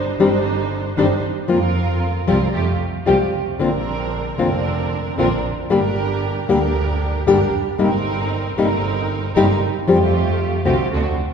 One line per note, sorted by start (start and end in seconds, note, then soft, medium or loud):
0.00 0.15 G1 medium
0.00 0.15 D4 medium
0.00 0.15 D#4 medium
0.00 0.15 C5 medium
0.19 0.93 G1 medium
0.19 0.28 D#3 medium
0.19 0.28 G3 medium
0.19 0.29 C4 medium
0.19 0.93 D4 medium
0.19 0.29 D4 medium
0.19 0.93 D#4 medium
0.19 0.29 G4 loud
0.19 0.93 C5 medium
0.96 1.19 G1 medium
0.96 1.06 D#3 medium
0.96 1.06 G3 medium
0.96 1.07 C4 medium
0.96 1.19 D4 medium
0.96 1.07 D4 loud
0.96 1.19 D#4 medium
0.96 1.07 G4 medium
0.96 1.19 C5 medium
1.48 2.24 F2 medium
1.48 1.58 F3 medium
1.48 1.58 A#3 medium
1.48 2.23 C4 medium
1.48 1.58 C4 medium
1.48 2.24 F4 medium
1.48 1.58 F4 loud
1.48 2.24 A#4 medium
2.27 2.50 C2 loud
2.27 2.37 F3 medium
2.27 2.37 G3 medium
2.27 2.49 C4 medium
2.27 2.37 C4 medium
2.27 2.50 F4 medium
2.27 2.37 G4 medium
2.27 2.50 A#4 medium
2.53 2.76 F2 loud
2.53 2.76 A3 medium
2.53 2.76 F4 medium
2.53 2.76 G4 medium
3.06 3.30 C2 medium
3.06 3.16 F3 medium
3.06 3.16 G3 medium
3.06 3.29 A3 medium
3.06 3.16 C4 medium
3.06 3.29 F4 medium
3.06 3.16 G4 loud
3.06 3.30 G4 medium
3.60 4.36 A#1 medium
3.60 3.69 D3 medium
3.60 3.69 A#3 medium
3.60 4.35 C4 medium
3.60 3.69 C4 medium
3.60 4.35 D4 medium
3.60 3.70 F4 medium
3.60 4.36 A#4 medium
4.38 5.14 F1 loud
4.38 4.48 D3 medium
4.38 4.48 A#3 medium
4.38 5.14 C4 medium
4.38 4.48 C4 loud
4.38 5.14 D4 medium
4.38 4.48 F4 loud
4.38 5.14 A#4 medium
5.18 5.40 A#1 medium
5.18 5.27 D3 medium
5.18 5.27 A#3 loud
5.18 5.40 C4 medium
5.18 5.28 C4 medium
5.18 5.40 D4 medium
5.18 5.28 F4 medium
5.18 5.40 A#4 medium
5.70 6.46 G1 medium
5.70 5.79 D3 medium
5.70 5.80 G3 medium
5.70 5.80 A#3 medium
5.70 6.46 D4 medium
5.70 5.80 D4 medium
5.70 6.46 G4 medium
5.70 5.80 G4 loud
5.70 6.46 A#4 medium
6.49 7.24 D2 medium
6.49 6.58 D3 medium
6.49 6.58 G3 medium
6.49 6.58 A#3 medium
6.49 7.24 D4 medium
6.49 6.59 D4 medium
6.49 7.24 G4 medium
6.49 6.59 G4 loud
6.49 7.24 A#4 medium
7.27 7.50 G1 loud
7.27 7.36 D3 medium
7.27 7.36 G3 medium
7.27 7.37 A#3 medium
7.27 7.37 D4 loud
7.27 7.50 D4 medium
7.27 7.37 G4 loud
7.27 7.50 G4 medium
7.27 7.50 A#4 medium
7.55 7.80 F1 medium
7.78 8.55 G1 loud
7.78 7.88 C3 medium
7.78 7.89 G3 medium
7.78 7.89 A#3 medium
7.78 8.54 C4 medium
7.78 7.89 D#4 medium
7.78 8.54 D#4 medium
7.78 7.89 G4 medium
7.78 8.54 A#4 medium
8.57 9.32 G1 loud
8.57 8.67 C3 medium
8.57 8.67 G3 medium
8.57 8.67 A#3 medium
8.57 9.31 C4 medium
8.57 9.31 D#4 medium
8.57 8.67 D#4 loud
8.57 8.68 G4 loud
8.57 9.31 A#4 medium
9.34 9.57 G1 loud
9.34 9.45 C3 medium
9.34 9.45 G3 loud
9.34 9.45 A#3 loud
9.34 9.57 C4 medium
9.34 9.57 D#4 medium
9.34 9.45 D#4 loud
9.34 9.45 G4 loud
9.34 9.57 A#4 medium
9.87 10.61 F2 loud
9.87 9.97 F3 medium
9.87 9.97 G3 loud
9.87 10.62 A3 medium
9.87 9.97 C4 medium
9.87 10.62 F4 medium
9.87 10.62 G4 medium
9.87 9.97 G4 medium
10.65 10.88 C2 medium
10.65 10.74 D3 medium
10.65 10.88 A3 medium
10.65 10.74 A3 medium
10.65 10.75 C4 loud
10.65 10.88 F4 medium
10.65 10.75 F#4 medium
10.65 10.88 G4 medium
10.91 11.14 D2 loud
10.91 11.15 C4 medium
10.91 11.15 D4 medium
10.91 11.15 F#4 medium